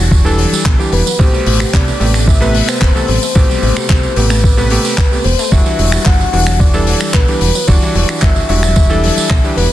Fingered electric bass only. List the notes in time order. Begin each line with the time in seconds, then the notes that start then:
Already playing: E1
0.52 muted fingered electric bass stroke
0.66 B1
0.92 E1
1.19 A1
1.47 A1
1.73 C2
2.00 A1
2.82 E1
3.09 A1
3.36 A1
3.63 A1
3.76 muted fingered electric bass stroke
3.90 C2
4.16 A1
5.25 E1
5.52 E1
5.79 E1
6.06 G1
6.33 E1
7.14 B1
7.41 E1
7.68 E1
7.95 E1
8.09 muted fingered electric bass stroke
8.22 G1
8.49 E1
9.17 muted fingered electric bass stroke
9.30 B1
9.57 E1